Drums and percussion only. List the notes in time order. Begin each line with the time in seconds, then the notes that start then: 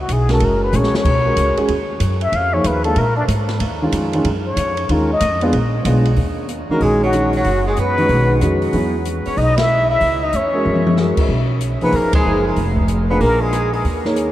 0.09 kick, hi-hat pedal, ride
0.29 snare, ride
0.40 kick, ride
0.72 hi-hat pedal, mid tom
0.84 snare
0.94 snare
1.05 kick, crash
1.37 kick, hi-hat pedal, ride
1.57 ride
1.68 kick, ride
2.00 kick, hi-hat pedal, ride
2.21 ride
2.32 kick, ride
2.64 kick, hi-hat pedal, ride
2.84 ride
2.96 kick, ride
3.28 kick, hi-hat pedal, ride
3.49 snare, ride
3.60 kick, ride
3.92 kick, hi-hat pedal, ride
4.13 ride
4.25 kick, ride
4.57 kick, hi-hat pedal, ride
4.77 ride
4.89 kick, ride
5.21 kick, hi-hat pedal, ride
5.41 ride
5.53 kick, ride
5.85 kick, hi-hat pedal, ride
6.05 ride
6.16 kick, open hi-hat
6.49 closed hi-hat
6.81 kick, open hi-hat
7.13 cross-stick, closed hi-hat
7.33 open hi-hat
7.45 kick, open hi-hat
7.77 closed hi-hat
7.98 open hi-hat
8.09 kick, open hi-hat
8.41 cross-stick, closed hi-hat
8.62 open hi-hat
8.73 kick, open hi-hat
9.05 closed hi-hat
9.26 open hi-hat
9.37 kick, open hi-hat
9.58 snare, ride
10.01 kick, open hi-hat
10.33 closed hi-hat
10.65 high tom
10.76 high tom
10.87 high tom
10.97 snare
11.17 kick, crash
11.29 kick
11.61 closed hi-hat
11.81 open hi-hat
11.92 kick, open hi-hat
12.13 kick, ride
12.56 kick, open hi-hat
12.77 kick
12.88 closed hi-hat
13.21 kick, open hi-hat
13.53 cross-stick, closed hi-hat
13.73 open hi-hat
13.85 kick, open hi-hat
14.05 snare
14.16 closed hi-hat